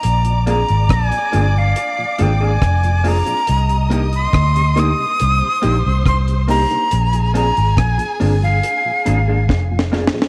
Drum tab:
HH |x--x--x--x--x--x--x-----x-----x-----x--x--o--x--|x--x--x--x--x--x--x-----x-----x-----x--x--o--x--|x--x--x--x--x--x--o-----x-----x-----------------|
SD |------------r-----------------------r-----------|------------r-----r-----------------r-----------|------------r-----------------------o---o-o-o-o-|
BD |------------o-----------------------o-----------|------------o-----------------------o-----------|------------o-----------------------o-----------|